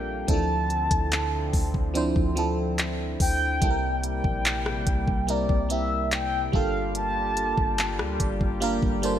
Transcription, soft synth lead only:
Already playing: G5
0.29 A5
3.21 G5
4.05 G5
5.30 D5
5.71 E5
6.13 G5
6.55 F5
6.97 A5

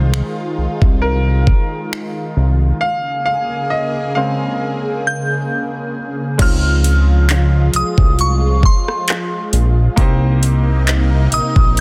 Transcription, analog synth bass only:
Already playing: C2
0.58 C2
0.82 C2
2.37 C2
6.39 C#2
7.74 C2
7.98 C2
9.53 A#1
9.98 C2
11.32 A#1
11.56 A#1

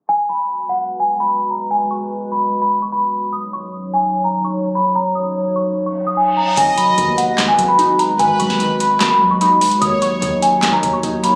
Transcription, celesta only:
0.09 G#5
0.29 B5
0.69 F#5
1.00 G#5
1.20 B5
1.50 A#5
1.71 G#5
1.91 C#6
2.32 B5
2.62 B5
2.82 C#6
2.92 B5
3.33 D#6
3.53 C#6
3.94 G#5
4.24 A#5
4.45 C#6
4.75 B5
4.95 A#5
5.15 D#6
5.56 C#6
5.86 C#6
6.07 D#6
6.17 G#5
6.37 A#5
6.57 G#5
6.78 B5
7.18 F#5
7.48 G#5
7.69 B5
7.99 A#5
8.19 G#5
8.39 C#6
8.81 B5
9.10 B5
9.31 C#6
9.41 B5
9.82 D#6
10.02 C#6
10.42 G#5
10.73 A#5
10.93 C#6
11.24 B5

